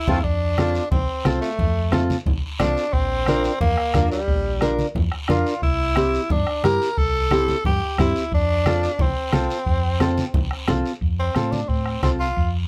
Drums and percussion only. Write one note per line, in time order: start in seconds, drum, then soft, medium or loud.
0.08 bombo low medium
0.08 high conga loud
0.08 long guiro medium
0.24 bombo low medium
0.24 long guiro medium
0.58 bombo rim medium
0.58 high conga medium
0.58 short guiro medium
0.75 short guiro medium
0.91 bombo low medium
0.91 low conga medium
0.91 long guiro medium
1.25 bombo rim medium
1.25 high conga medium
1.25 short guiro medium
1.42 short guiro medium
1.59 bombo low medium
1.59 low conga medium
1.59 long guiro medium
1.92 bombo rim medium
1.92 high conga medium
1.92 short guiro medium
2.10 high conga medium
2.10 short guiro medium
2.26 bombo low medium
2.26 low conga medium
2.26 long guiro medium
2.60 bombo rim medium
2.60 high conga medium
2.60 low conga medium
2.60 short guiro medium
2.77 short guiro medium
2.93 bombo low medium
2.93 long guiro medium
3.26 bombo rim medium
3.26 high conga medium
3.26 short guiro medium
3.44 short guiro medium
3.61 bombo low medium
3.61 low conga medium
3.61 long guiro medium
3.77 bombo rim medium
3.94 bombo low medium
3.94 bombo rim medium
3.94 high conga medium
3.94 short guiro medium
4.11 short guiro medium
4.28 bombo low medium
4.28 long guiro medium
4.61 bombo rim medium
4.61 high conga medium
4.61 short guiro medium
4.79 high conga medium
4.79 short guiro medium
4.95 bombo low medium
4.95 low conga medium
4.95 long guiro medium
5.12 bombo rim medium
5.28 bombo rim medium
5.28 high conga medium
5.28 short guiro medium
5.46 short guiro medium
5.62 bombo low medium
5.62 long guiro medium
5.96 bombo rim medium
5.96 high conga medium
5.96 short guiro medium
6.14 short guiro medium
6.30 bombo low medium
6.30 low conga medium
6.30 long guiro medium
6.47 bombo rim medium
6.64 bombo rim medium
6.64 high conga medium
6.64 short guiro medium
6.82 short guiro medium
6.97 bombo low medium
6.97 long guiro medium
7.31 bombo rim medium
7.31 high conga medium
7.31 short guiro medium
7.48 high conga medium
7.48 short guiro medium
7.65 bombo low medium
7.65 low conga medium
7.65 long guiro medium
7.98 bombo low medium
7.98 bombo rim medium
7.98 high conga medium
7.98 short guiro medium
8.16 short guiro medium
8.32 bombo low medium
8.32 long guiro medium
8.66 bombo rim medium
8.66 high conga medium
8.66 short guiro medium
8.83 short guiro medium
8.99 bombo low medium
8.99 low conga medium
8.99 long guiro medium
9.33 bombo rim medium
9.33 high conga medium
9.33 short guiro medium
9.50 short guiro medium
9.66 bombo low medium
9.66 long guiro medium
10.00 bombo rim medium
10.00 high conga medium
10.00 short guiro medium
10.17 high conga medium
10.17 short guiro medium
10.34 bombo low medium
10.34 low conga medium
10.34 long guiro medium
10.51 bombo rim medium
10.68 bombo rim medium
10.68 high conga medium
10.68 low conga medium
10.68 short guiro medium
10.85 short guiro medium
11.01 bombo low medium
11.01 long guiro soft
11.35 bombo rim medium
11.35 high conga medium
11.35 short guiro medium
11.52 high conga medium
11.52 short guiro medium
11.69 bombo low medium
11.69 long guiro medium
11.86 bombo rim medium
12.03 bombo low medium
12.03 bombo rim medium
12.03 high conga medium
12.03 short guiro medium
12.21 short guiro medium
12.37 bombo low medium
12.37 long guiro medium